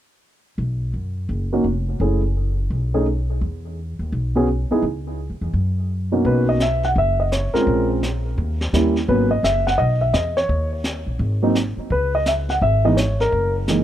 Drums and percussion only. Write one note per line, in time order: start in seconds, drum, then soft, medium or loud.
6.25 brush sweep soft
6.25 kick soft
6.60 snare soft
6.60 hi-hat pedal soft
6.83 snare soft
6.96 brush sweep soft
6.96 kick soft
7.32 snare soft
7.32 hi-hat pedal soft
7.55 snare soft
7.67 brush sweep soft
7.67 kick soft
8.03 snare soft
8.03 hi-hat pedal soft
8.38 brush sweep soft
8.38 kick soft
8.61 snare soft
8.74 snare soft
8.74 hi-hat pedal soft
8.96 snare soft
9.09 brush sweep soft
9.09 kick soft
9.44 snare soft
9.44 hi-hat pedal soft
9.67 snare soft
9.79 brush sweep soft
9.79 kick soft
10.14 snare soft
10.14 hi-hat pedal soft
10.37 snare soft
10.49 brush sweep soft
10.49 kick soft
10.84 snare soft
10.84 hi-hat pedal soft
11.19 brush sweep soft
11.19 kick soft
11.55 snare soft
11.55 hi-hat pedal soft
11.90 brush sweep soft
11.90 kick soft
12.26 snare soft
12.26 hi-hat pedal soft
12.49 snare soft
12.62 brush sweep soft
12.62 kick soft
12.97 snare soft
12.97 hi-hat pedal soft
13.20 snare soft
13.32 brush sweep soft
13.32 kick soft
13.68 snare soft
13.68 hi-hat pedal medium